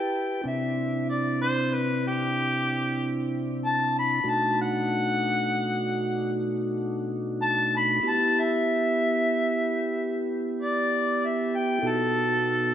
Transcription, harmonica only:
0.00 0.45 G5 medium
0.47 1.08 E5 medium
1.10 1.40 D5 medium
1.41 1.76 C5 loud
1.74 2.04 B4 medium
2.07 3.28 G4 loud
3.66 3.94 A5 loud
3.99 4.31 B5 loud
4.29 4.58 A5 loud
4.62 6.45 F#5 loud
7.42 7.72 A5 loud
7.77 8.10 B5 loud
8.09 8.42 A5 loud
8.40 10.24 E5 loud
10.62 11.27 D5 loud
11.25 11.58 E5 medium
11.56 11.90 G5 loud
11.88 12.74 A4 loud

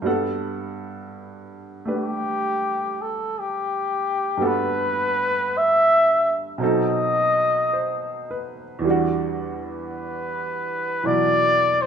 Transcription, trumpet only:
1.93 3.03 G4 medium
3.02 3.40 A4 medium
3.39 4.48 G4 medium
4.47 5.59 B4 medium
5.58 6.48 E5 medium
6.67 8.49 D#5 medium
9.65 11.07 B4 medium
11.06 11.83 D5 loud
11.82 11.86 C5 medium

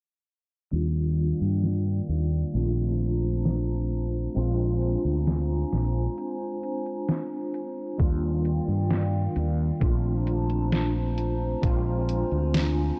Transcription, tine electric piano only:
0.71 2.45 G3 medium
0.71 2.45 A#3 medium
0.71 2.46 D4 medium
0.71 2.46 F4 medium
2.53 4.27 A3 medium
2.53 4.27 C4 medium
2.53 4.28 D4 medium
2.53 4.28 F4 medium
4.34 7.90 G#3 medium
4.34 7.90 C4 medium
4.34 7.91 D4 medium
4.34 7.91 F4 medium
7.98 9.72 G3 medium
7.98 9.72 A#3 medium
7.98 9.73 D4 medium
7.98 9.73 F4 medium
9.80 11.53 A3 medium
9.80 11.54 C4 medium
9.80 11.55 D4 medium
9.80 11.55 F4 medium
11.62 12.99 G#3 medium
11.62 12.99 C4 medium
11.62 12.99 D4 medium
11.62 12.99 F4 loud

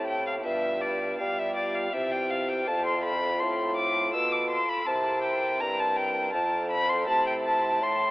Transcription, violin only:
0.07 0.26 G5 medium
0.27 0.34 F5 medium
0.45 0.83 E5 medium
0.81 1.18 D5 medium
1.19 1.40 F5 medium
1.38 1.55 E5 medium
1.56 1.76 D5 medium
1.75 1.94 F5 medium
1.93 2.13 E5 medium
2.12 2.32 G5 medium
2.30 2.51 F5 medium
2.49 2.69 G5 medium
2.67 2.85 A5 medium
2.86 3.03 C6 medium
3.04 3.42 B5 medium
3.40 3.76 C6 medium
3.77 4.13 D6 medium
4.14 4.34 E6 medium
4.32 4.50 D6 medium
4.50 4.70 C6 medium
4.69 4.88 B5 medium
4.87 5.22 A5 medium
5.22 5.62 G5 medium
5.61 5.81 A#5 medium
5.79 5.98 A5 medium
5.97 6.33 G5 medium
6.33 6.70 A5 medium
6.71 6.91 B5 medium
6.90 7.07 C6 medium
7.07 7.25 A5 medium
7.27 7.34 G5 medium
7.45 7.84 A5 medium
7.83 8.11 C6 medium

